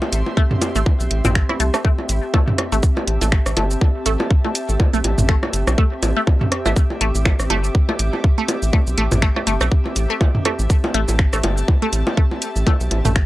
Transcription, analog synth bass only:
0.12 A1
0.75 A1
1.00 B1
1.11 A1
1.25 A1
1.60 C2
2.09 A1
2.72 A1
3.08 A1
3.21 A1
3.46 A1
3.57 G1
4.06 A1
4.69 A1
4.94 B1
5.04 A1
5.18 A1
5.53 G1
5.67 B1
6.03 A1
6.66 A1
7.01 A1
7.15 A1
7.39 A1
7.50 G1
7.99 A1
8.63 A1
8.87 B1
8.98 A1
9.12 A1
9.47 G1
9.61 B1
9.96 A1
10.59 A1
10.94 A1
11.09 A1
11.33 A1
11.44 G1
11.93 A1
12.56 A1
12.81 B1
12.91 A1
13.05 A1

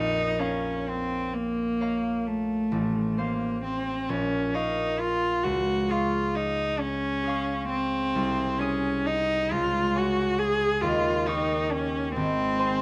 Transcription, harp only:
Already playing: A#1
0.39 C#5 F5 A#5
1.80 C#5 F5 A#5
2.72 A1
3.18 C5 F5 C6
4.09 A#1
4.54 A#4 F5 C#6
5.44 C#2
5.88 G#4 F5 C#6
7.24 G#4 F5
7.29 C#6
8.15 C2
8.60 G#4 G#5 D#6
9.51 C#2
9.95 C#5 G#5 C#6
10.83 D#2
11.26 A#4 G5 C#6
12.16 G#1
12.59 C5 G#5 C6

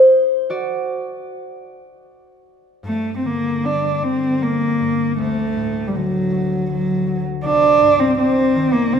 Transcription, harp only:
Already playing: D#4 C5 D#5
0.50 F#4 D5
2.83 G2
3.24 D3
3.63 G3
4.03 D3
4.41 G3
4.80 G2
5.18 D2
5.57 A2
5.94 D3
6.32 F#3
6.69 D3
7.06 F#3
7.44 C2
7.81 G2
8.18 C3
8.54 D#3
8.93 C3

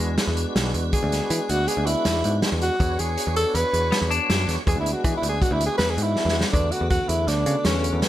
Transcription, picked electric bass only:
0.00 E2
0.27 E2
0.56 B1
0.74 E2
1.03 D2
1.30 E3
1.50 D2
1.77 D2
2.06 E2
2.25 G#2
2.52 E2
2.80 E2
2.99 E2
3.27 E2
3.54 E2
3.73 E2
4.02 E2
4.30 F#2
4.48 E2
4.67 E2
4.76 D2
5.05 E3
5.22 D2
5.51 D2
5.79 E2
5.97 G#2
6.25 E2
6.54 E2
6.81 E2
7.09 E2
7.27 D2
7.46 C#3
7.65 E2
7.93 E2

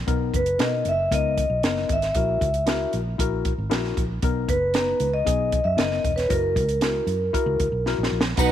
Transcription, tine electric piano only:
0.07 B3 D#4 A#4
0.58 B3 D#4 A#4
1.11 B3 D#4 A#4
1.64 B3 D#4 A#4
2.15 E4 F#4 A#4
2.66 E4 F#4 A#4
3.18 E4 F#4 A#4
3.70 E4 F#4 A#4
4.22 B3 D#4 A#4
4.74 B3 D#4 A#5
5.25 B3 D#4 G#4
5.77 B3 D#4 A#4
6.29 E4 F#4 A#4
6.81 E4 F#4 A#4
7.33 E4 F#4 A#4
7.86 E4 F#4 A#4
8.37 B3 D#4 A#5

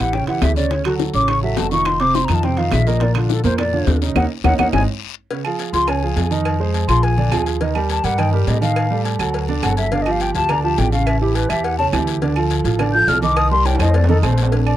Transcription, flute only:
0.00 F#5
0.14 G5
0.28 F#5
0.43 E5
0.57 D5
0.72 C#5
0.85 F#4
1.15 D6
1.29 C#6
1.43 E5
1.58 A5
1.71 C#6
1.86 C6
2.00 D6
2.15 C6
2.25 A#5
2.35 A5
2.44 G5
2.58 F5
2.73 E5
2.87 D#5
3.03 D5
3.16 F4
3.30 A4
3.45 C5
3.59 D5
4.17 F#5
4.45 F#5
4.59 F#5
4.74 G#5
5.74 C6
5.89 G#5
6.89 C6
7.03 G#5
7.91 A5
8.04 F#5
8.19 G5
8.33 A#4
8.48 D#5
8.62 F5
9.63 F#5
9.77 E5
9.92 F5
10.02 D#5
10.11 F5
10.21 G5
10.35 A5
10.50 A#5
10.63 A5
10.79 G5
10.92 F5
11.06 E5
11.21 G4
11.35 B4
11.49 E5
11.64 F#5
11.78 A5
12.94 G6
13.09 F6
13.23 D6
13.37 D#6
13.51 C6
13.66 G5
13.80 D#5
13.95 D5
14.09 A4

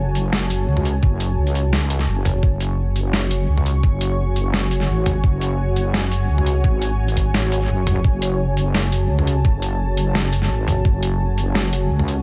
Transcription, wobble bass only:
Already playing: F#1
0.68 C#2
1.03 F#1
1.38 C#2
2.08 F#1
2.43 F#1
3.48 C#2
3.83 F#1
4.89 G#1
5.24 F#1
6.29 C#2
6.64 G#1
7.70 F#1
8.05 F#1
9.10 C#2
9.45 F#1
10.50 G#1
10.85 F#1
11.90 C#2

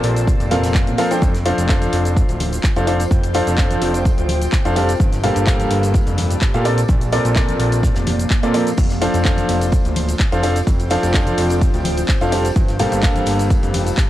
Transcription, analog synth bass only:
0.04 A#1
0.40 F1
0.87 A#1
1.22 F1
1.58 F1
1.93 F1
2.29 D1
2.76 F1
3.11 F1
3.47 F1
3.82 F1
4.18 D1
4.65 F1
5.00 G1
5.36 G1
5.71 G1
6.07 F1
6.54 A#1
6.89 A#1
7.25 A#1
7.60 A#1
7.96 F1
8.43 A#2
8.78 F1
9.14 F1
9.49 F1
9.85 D1
10.32 F1
10.67 F1
11.03 F1
11.38 F1
11.74 D1
12.21 F1
12.56 G1
12.92 G1
13.27 G1
13.63 F1

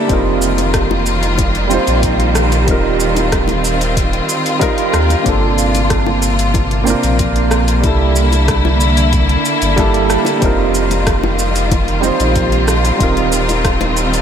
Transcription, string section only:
Already playing: A#3
0.09 D#3 G3 F4
2.67 C4 F4
5.27 C3 A#3
7.84 D3 E4
10.42 D#3 G3 F4
13.00 C4

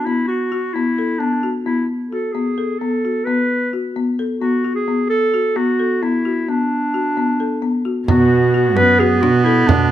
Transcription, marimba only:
0.07 B3
0.52 F#4
0.75 B3
0.98 A4
1.20 B3
1.43 F#4
1.66 B3
2.13 F#4
2.35 B3
2.58 A4
2.81 B3
3.05 F#4
3.27 B3
3.73 F#4
3.96 B3
4.19 A4
4.41 B3
4.64 F#4
4.88 B3
5.34 F#4
5.56 B3
5.79 A4
6.03 B3
6.25 F#4
6.48 B3
6.94 F#4
7.17 B3
7.40 A4
7.62 B3
7.85 F#4
8.08 B3
8.54 F#4
8.77 B3
9.00 F#4
9.23 D4
9.46 A4
9.69 B3

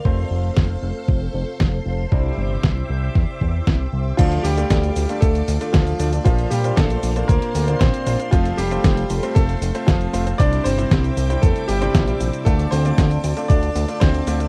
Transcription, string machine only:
Already playing: F5 C6
0.05 A4 C5
2.11 E5 G5 D6
4.19 A4 D5 F5 D6
6.25 C5 F5 C6
8.32 A4 C5
10.39 E5 G5 D6
12.46 A4 D5 A5

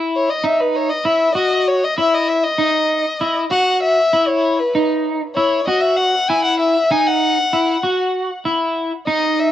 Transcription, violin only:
0.16 C#5
0.30 D#5
0.44 E5
0.60 B4
0.76 C#5
0.89 D#5
1.06 E5
1.34 D#5
1.67 C#5
1.84 D#5
1.98 E5
2.14 D#5
2.28 E5
2.44 D#5
3.51 F#5
3.83 E5
4.28 C#5
4.59 B4
5.36 C#5
5.67 D#5
5.81 E5
5.96 F#5
6.28 G#5
6.44 F#5
6.59 E5
6.91 G#5
7.07 F#5
9.07 D#5
9.40 E5

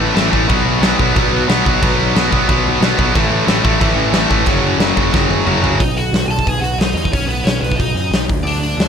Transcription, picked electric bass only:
0.00 A1
0.16 A1
0.33 A1
0.49 B1
0.65 B1
0.81 B1
0.99 B1
1.16 B1
1.32 B1
1.48 B1
1.66 B1
1.82 B1
1.98 B1
2.15 B1
2.32 B1
2.49 B1
2.65 B1
2.80 B1
2.98 B1
3.15 A1
3.30 A1
3.46 A1
3.64 A1
3.80 A1
3.95 A1
4.11 A1
4.30 A1
4.46 F#1
4.62 F#1
4.78 F#1
4.96 F#1
5.13 F#1
5.29 F#1
5.45 F#1
5.61 F#1
5.80 B1
6.12 B1
6.27 B1
6.46 B1
6.61 B1
6.78 B1
6.94 E2
7.13 B1
7.27 B1
7.44 B1
7.62 B1
7.79 B1
7.94 F#2
8.11 B1
8.28 D2
8.43 D2
8.77 D2

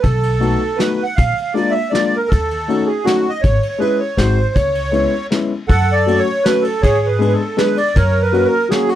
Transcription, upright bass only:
0.04 B1
1.18 A#1
2.32 D#2
3.44 G#1
4.17 G#1
4.56 C#2
5.69 F#2
6.84 G#2
7.96 F#2

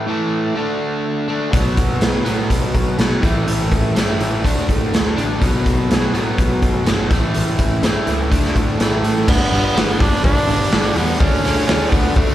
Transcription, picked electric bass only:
1.53 B1
1.78 B1
2.01 B1
2.25 A2
2.50 B1
2.74 B1
2.98 B1
3.23 A1
3.47 A1
3.71 A1
3.95 G2
4.19 A1
4.44 D2
4.69 A2
4.93 D2
5.17 A1
5.41 B1
5.66 B1
5.90 B1
6.14 A2
6.38 B1
6.62 B1
6.87 G1
7.10 A1
7.35 A1
7.59 A1
7.83 G2
8.07 C#2
8.32 D2
8.56 A2
8.79 A1
9.03 A2
9.28 G1
9.52 G1
9.76 G1
10.00 G1
10.24 G1
10.49 G1
10.72 G1
10.96 E2
11.20 D2
11.68 D2
11.92 D2
12.16 D2

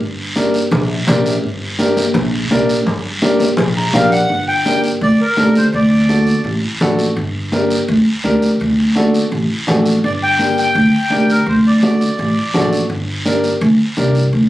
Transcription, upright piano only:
0.36 D4 G4 A#4
1.07 D4 G4 A#4
1.79 D4 G4 A#4
2.51 D4 G4 A#4
3.22 D4 G4 A#4
3.77 A#5
3.94 D4 G4 A#4 G5
4.12 D5
4.65 D4 G4 A#4
5.37 D4 G4 A4
6.09 D4 F#4 A4
6.81 D4 F#4 A4
7.52 D4 G4 A#4
8.24 D4 G4 A#4
8.95 D4 F#4 A4
9.67 D4 F#4 A4
10.39 D4 G4 A#4
11.11 D4 G4 A#4
11.83 D4 F#4 A4
12.54 D4 F#4 A4
13.25 D4 G4 A#4
13.97 D4 G4 A#4

